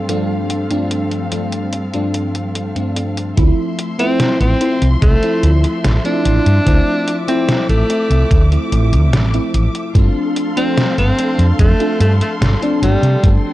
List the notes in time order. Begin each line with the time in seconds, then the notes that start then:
Already playing: G3 C4 A4 F5
0.08 G2 F3 A3 C4 D4, closed hi-hat
0.50 closed hi-hat
0.70 G2 F3 A3 C4 D4, closed hi-hat
0.91 closed hi-hat
1.11 closed hi-hat
1.32 G2 F3 A3 C4 D4, closed hi-hat
1.52 closed hi-hat
1.73 closed hi-hat
1.93 G2 F3 A3 C4 D4, closed hi-hat
2.14 closed hi-hat
2.35 closed hi-hat
2.55 closed hi-hat
2.75 G2 F3 A3 C4 D4, closed hi-hat
2.96 closed hi-hat
3.17 closed hi-hat
3.37 D2 F3 A3 C4 E4 E5 C6, kick, closed hi-hat
3.79 closed hi-hat
3.98 F3 A3 C4 E4, closed hi-hat
4.20 snare, closed hi-hat
4.40 A1 C4, closed hi-hat
4.60 F3 A3 C4 E4, closed hi-hat
4.82 C2, closed hi-hat
5.02 C2 A3, kick, closed hi-hat
5.22 F3 A3 C4 E4, closed hi-hat
5.43 D2, closed hi-hat
5.64 muted fretless electric bass stroke, closed hi-hat
5.84 A1, snare, closed hi-hat
6.04 F3 A3 C4 D4 E4, closed hi-hat
6.25 A1, closed hi-hat
6.46 G2, closed hi-hat
6.66 D2 F3 A3 C4 E4 D6, kick, closed hi-hat
7.08 closed hi-hat
7.27 F3 A3 C4 E4, closed hi-hat
7.49 snare, closed hi-hat
7.69 A1 A3, closed hi-hat
7.89 F3 A3 C4 E4, closed hi-hat
8.10 C2, closed hi-hat
8.31 D2, kick, closed hi-hat
8.51 F3 A3 C4 E4, closed hi-hat
8.72 A1, closed hi-hat
8.92 D2, closed hi-hat
9.13 A1, snare, closed hi-hat
9.33 F3 A3 C4 E4, closed hi-hat
9.54 A1, closed hi-hat
9.75 closed hi-hat
9.94 G2 F3 A3 C4 D4 A4 F5 C6, kick, closed hi-hat
10.36 closed hi-hat
10.56 F3 A3 C4 D4, closed hi-hat
10.77 snare, closed hi-hat
10.98 G1 C4, closed hi-hat
11.17 F3 A3 C4 D4, closed hi-hat
11.38 F2, closed hi-hat
11.59 F2 A3, kick, closed hi-hat
11.79 F3 A3 C4 D4, closed hi-hat
12.00 G2 A3, closed hi-hat
12.21 A3, muted fretless electric bass stroke, closed hi-hat
12.41 G1, snare, closed hi-hat
12.61 F3 A3 C4 D4, closed hi-hat
12.82 G1 G3, closed hi-hat
13.03 C3, closed hi-hat
13.23 G2 F3 A3 C4 D4 G5, kick, closed hi-hat